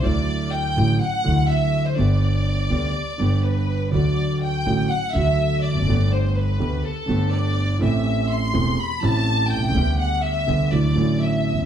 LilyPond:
<<
  \new Staff \with { instrumentName = "Violin section" } { \time 4/4 \key g \major \tempo 4 = 124 d''4 g''4 fis''4 e''8. c''16 | d''2. b'4 | d''4 g''4 fis''8 e''4 d''8~ | d''8 c''8 b'4 a'4 d''4 |
e''4 c'''4 b''8 a''4 g''8~ | g''8 fis''8 e''4 d''4 e''4 | }
  \new Staff \with { instrumentName = "Grand piano" } { \clef bass \time 4/4 \key g \major << { <d, d fis a e'>4. <a,, a, d fis a e'>8 r8 <d, d fis a e'>4. | <g,, g, d g b g'>4. <d, d g b g'>8 r8 <g,, g, d g b g'>4. | <d, d fis a fis'>4. <a,, a, d fis a fis'>8 r8 <d, d fis a fis'>4. | <g,, g, d a b g'>4. <d, d a b g'>8 r8 <g,, g, d a b g'>4. |
<a,, a, e a c' g'>4. <e,, e, e a c' g'>8 r8 <a,, a, e a c' g'>4. | <d, d g b g'>4. <d, d g b g'>8 <d, d fis a e'>8 <a,, a, d fis a e'>4. | } \\ { r1 | r1 | r2. r8 r32 e,32 f,32 fis,32 | r1 |
r2. r8 r32 b,,32 c,32 cis,32 | r2. r8 r32 e,32 f,32 r32 | } >> }
  \new Staff \with { instrumentName = "Upright bass" } { \clef bass \time 4/4 \key g \major d,4~ d,16. r32 a,,16. r8 r32 d,4~ d,16. r32 | g,,4~ g,,16. r32 d,16. r8 r32 g,,4~ g,,16. r32 | d,4~ d,16. r32 a,,16. r8 r32 d,4~ d,32 e,,32 f,,32 fis,,32 | g,,4~ g,,16. r32 d,16. r8 r32 g,,4~ g,,16. r32 |
a,,4~ a,,16. r32 e,,16. r8 r32 a,,4~ a,,32 b,,32 c,32 cis,32 | d,4~ d,16. r32 d,16. r32 d,16. r32 a,,4~ a,,32 e,,32 f,,32 r32 | }
>>